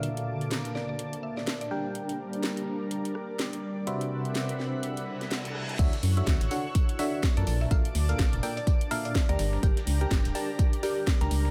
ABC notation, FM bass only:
X:1
M:4/4
L:1/16
Q:"Swing 16ths" 1/4=125
K:Glyd
V:1 name="FM bass" clef=bass
z16 | z16 | z16 | D,, z F,, z D,, A,,, z6 z F,, _B,,, z |
_B,,, z D,, z B,,, =F,,, z6 z D,, G,,, z | G,,, z C,, z G,,, D,,, z6 z C,, C,, z |]